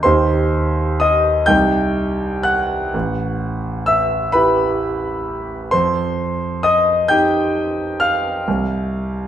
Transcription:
0.03 D#2 D#4 G4 C5 C6
1.00 D#5 D#6
1.46 C2 D#4 G4 G5 G6
2.43 F#5 F#6
2.94 A1
3.86 E5 E6
4.32 E4 G4 B4 B5
5.71 F2 C5 C6
6.63 D#5 D#6
7.08 D#4 G4 G5 G6
8.00 F5 F6
8.48 C2

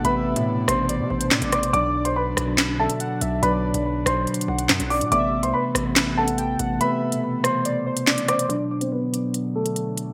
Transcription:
Already playing: C3 E3 A3 B3 D4
0.03 A1 C3 A3 B3 B4 E5 B5, closed hi-hat
0.35 A2 B2 C3 A3, closed hi-hat
0.68 A1 C5 C6, cross-stick, closed hi-hat
0.89 D5, closed hi-hat
1.00 C3
1.10 A1 C5
1.21 closed hi-hat
1.31 A2 D5, snare, clap
1.42 A1, closed hi-hat
1.52 C5 D5 D6, cross-stick, closed hi-hat
1.63 closed hi-hat
1.73 B1 B2 D3 F#3 D4 D5 D6, closed hi-hat
2.05 C5 C6, closed hi-hat
2.16 B4 B5
2.37 B1, cross-stick, closed hi-hat
2.46 B2 F#3 D4
2.58 snare, clap, closed hi-hat
2.78 B2 F#3 D4 A4 E5 A5
2.90 closed hi-hat
3.00 F#5, closed hi-hat
3.21 B1 E5, closed hi-hat
3.42 B1 B2 F#3 D4 B4 D5 B5, closed hi-hat
3.73 B1 B2 F#3 D4, closed hi-hat
4.06 B1 C5 C6, cross-stick, closed hi-hat
4.27 closed hi-hat
4.34 closed hi-hat
4.41 closed hi-hat
4.48 B1 F#5
4.59 closed hi-hat
4.69 F#2, snare, clap
4.80 B1, closed hi-hat
4.90 D5 D6, open hi-hat
5.01 B2, closed hi-hat
5.11 A1 C3 E3 A3 B3 D5 E5 D6, closed hi-hat
5.43 C2 C5 C6, closed hi-hat
5.54 B4 B5
5.75 A1, cross-stick, closed hi-hat
5.84 C3 A3 B3
5.96 snare, clap, closed hi-hat
6.15 C3 A3 B3 A4 F#5 A5
6.28 closed hi-hat
6.38 G5, closed hi-hat
6.59 A1 F#5, closed hi-hat
6.79 C3 A3 B3 B4 E5 B5, closed hi-hat
7.11 B2 C3 A3, closed hi-hat
7.44 C5 C6, cross-stick, closed hi-hat
7.65 D5, closed hi-hat
7.86 C5
7.97 closed hi-hat
8.07 D5, snare, clap
8.18 closed hi-hat
8.28 C5 D5 D6, cross-stick, closed hi-hat
8.39 closed hi-hat
8.49 B2 D3 F#3 D4 D5, closed hi-hat
8.80 B2 F#3 B3 C4 C5, closed hi-hat
8.92 B3 B4
9.12 B2 F#3 D4, closed hi-hat
9.34 closed hi-hat
9.55 A3 A4
9.66 closed hi-hat
9.76 closed hi-hat
9.97 closed hi-hat

